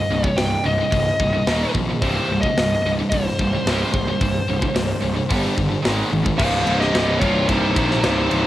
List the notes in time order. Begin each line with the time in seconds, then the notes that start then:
Already playing: D#5
0.10 C1 C2 G2
0.24 C2 G2 C#5, kick
0.37 C1 C2 G2 G5, snare, open hi-hat
0.65 C1 C2 G2 D#5
0.81 C2 G2
0.92 C1 C2 G2, kick, open hi-hat
1.19 C1 C2 G2, kick
1.34 C2 G2
1.47 D#1 D#2 A#2 D#3, snare, open hi-hat
1.75 A#1 D#2 A#2, kick
1.89 D#2 A#2
2.02 C1 C2 G2 C3 C5, kick, open hi-hat
2.29 C1 C2 G2
2.41 C2 G2 D#5, kick
2.57 C1 C2 G2, snare, open hi-hat
2.83 C1 D#5
2.87 C2 G2
2.99 C2 G2
3.10 C1 C2 G2 C5, kick, open hi-hat
3.39 C1 C2 G2, kick
3.55 C2 G2
3.66 C1 C2 G2 C3, snare, open hi-hat
3.93 C1 C2 G2, kick
4.08 C2 G2
4.21 C1 C2 G2, kick, open hi-hat
4.48 C1 C2 G2
4.62 C2 G2, kick
4.75 C1 C2 G2, snare, open hi-hat
5.02 C1 C2 G2
5.16 C2 G2
5.29 G1 G2 D3 G3, kick, open hi-hat
5.57 G1 G2 D3, kick
5.71 G2 D3
5.82 G#1 G#2 D#3 G#3, snare, open hi-hat
5.87 G#3
6.12 G#1 G#2 D#3, high tom
6.25 G#2 D#3, kick
6.38 C1 C2 G2 C3 C5 F5, kick, crash
6.65 C1 C2 G2 C3, ride
6.80 G4 D#5, snare
6.93 C1 C2 G2 C3, snare, ride
7.19 C1 C2 G2 C3 F4 C#5, kick, ride
7.49 C1 C2 G2 C3 D#4 C5, kick, ride
7.76 A#1 C2 G2 C3, kick, ride
7.91 snare
8.01 C1 C2 G2 C3 D#4 C5, snare, ride
8.05 C2 G2 C3
8.31 C1 C2 G2 C3, ride